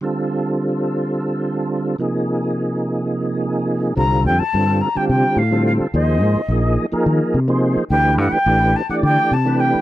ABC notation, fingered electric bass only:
X:1
M:7/8
L:1/16
Q:1/4=107
K:Cdor
V:1 name="Fingered electric bass" clef=bass
z12 z2 | z12 z2 | C,,2 F,, z G,,2 z2 C, z A,,3 z | E,,2 _A,, z B,,,2 z2 E, z C,3 z |
D,,2 G,, z A,,,2 z2 D, z C,3 z |]